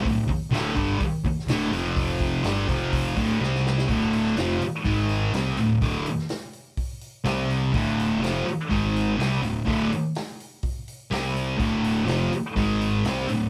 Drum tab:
HH |o-o-o-o-o-o-o-o-|o-o-o-o-o-o-----|o-o-o-o-o-o-o-o-|o-o-o-o-o-o-o-o-|
SD |----o------oo---|----o-------oooo|---oo-------o---|---oo-------o---|
BD |o-o---o-o-o-----|o-o---o-o-o-----|o-------o-------|o-------o-------|

HH |o-o-o-o-o-o-o-o-|o-o-o-o-o-o-o-o-|o-o-o-o-o-o-o-o-|
SD |----o-------o---|----o-------o---|----o-------o---|
BD |o-------o-------|o-------o-------|o-------o-------|